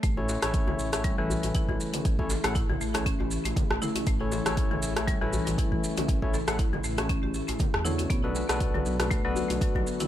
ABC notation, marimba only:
X:1
M:4/4
L:1/16
Q:"Swing 16ths" 1/4=119
K:Amix
V:1 name="Marimba"
A, z4 E, z2 G, E, z2 E E, z C | z2 A A, E E, A, C C G z A, z2 E C | A, z4 E, z2 G, E, z2 E E, z C | z2 A A, E E, A, C C G z A, z2 E C |
B, z4 F, z2 A, F, z2 F F, z E |]